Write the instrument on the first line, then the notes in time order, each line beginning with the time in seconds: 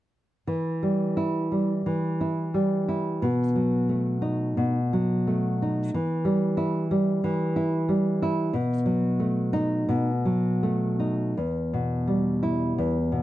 nylon-string guitar
0.47 E3
0.83 G3
1.17 E4
1.52 G3
1.86 E3
2.21 E4
2.54 G3
2.88 E4
3.22 B2
3.56 F#3
3.89 A3
4.22 D#4
4.57 B2
4.93 F#3
5.27 A3
5.62 D#4
5.94 E3
6.25 G3
6.57 E4
6.91 G3
7.24 E3
7.56 E4
7.89 G3
8.22 E4
8.53 B2
8.86 F#3
9.20 A3
9.53 D#4
9.89 B2
10.25 F#3
10.63 A3
11.00 D#4
11.37 E2
11.74 B2
12.07 G3
12.43 E4
12.78 E2
13.12 B2